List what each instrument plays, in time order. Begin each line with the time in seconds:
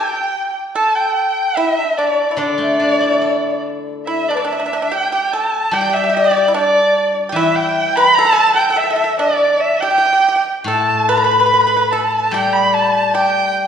Already playing: pipa G4, erhu G5, dizi G5
0.75 pipa A4, dizi A5, erhu A5
0.95 erhu G5, dizi G5
1.15 erhu G5
1.56 pipa E4, erhu E5, dizi E5
1.81 pipa D4
1.97 pipa D4, dizi D5, erhu D5
2.31 pipa E4
2.37 guzheng D3, pipa D4, erhu D5, dizi D5
2.58 guzheng A3
2.80 guzheng D4
3.00 guzheng E4
3.21 guzheng A4
4.06 pipa E4, erhu E5, dizi E5
4.28 pipa D4, dizi D5, erhu D5
4.34 pipa D4, dizi B4
4.40 dizi D5
4.45 pipa D4
4.49 pipa D4, erhu E5, dizi E5
4.60 pipa D4
4.66 pipa D4
4.73 pipa D4
4.82 pipa D4
4.91 pipa G4, dizi G5, erhu G5
5.12 pipa G4, erhu G5, dizi G5
5.32 pipa A4, dizi A5, erhu A5
5.71 guzheng G3, pipa G4, erhu G5, dizi G5
5.81 pipa G4
5.90 pipa G4, erhu E5
5.94 pipa G4, dizi E5
6.04 pipa G4
6.09 pipa G4, dizi D5
6.14 pipa G4, erhu D5
6.24 pipa G4
6.31 pipa G4
6.37 pipa G4
6.48 pipa E4
6.54 pipa D4, erhu D5, dizi D5
7.29 guzheng E3, pipa G4
7.34 pipa E4, erhu E5, dizi E5
7.55 erhu G5, dizi G5
7.96 pipa B4, erhu B5, dizi B5
8.15 pipa A4, erhu A5, dizi A5
8.25 pipa A4
8.33 pipa A4
8.39 pipa A4
8.48 pipa A4
8.54 pipa A4, erhu G5, dizi G5
8.61 pipa A4
8.70 pipa A4
8.76 pipa A4, erhu E5, dizi E5
8.84 pipa A4
8.90 pipa A4
8.96 pipa A4
9.04 pipa A4
9.18 pipa D4, dizi D5, erhu D5
9.60 erhu E5, dizi E5
9.80 pipa G4, erhu G5, dizi G5
9.91 pipa G4
9.98 pipa G4
10.06 pipa G4
10.13 pipa G4
10.20 pipa G4
10.28 pipa G4
10.36 pipa G4
10.64 guzheng A2, pipa A4, erhu A5
10.69 dizi A5
10.74 dizi G5
10.82 dizi A5
11.08 pipa B4, erhu B5, dizi B5
11.17 pipa B4
11.24 pipa B4
11.31 pipa B4
11.40 pipa B4
11.46 pipa B4
11.54 pipa B4
11.61 pipa B4
11.67 pipa B4
11.72 dizi B5
11.77 pipa B4
11.86 dizi B5
11.91 pipa A4, erhu A5, dizi A5
12.31 guzheng G3, pipa G4, erhu G5, dizi G5
12.53 erhu B5, dizi B5
12.73 dizi A5, erhu A5
12.82 dizi B5
12.90 dizi A5
13.14 pipa G4, erhu G5, dizi G5